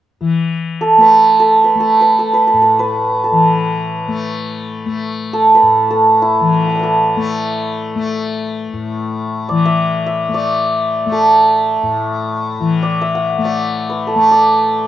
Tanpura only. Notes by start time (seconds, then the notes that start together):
0.21 E3
0.98 A3
1.75 A3
2.53 A2
3.32 E3
4.08 A3
4.86 A3
5.63 A2
6.40 E3
7.17 A3
7.95 A3
8.73 A2
9.50 E3
10.29 A3
11.06 A3
11.83 A2
12.60 E3
13.38 A3
14.15 A3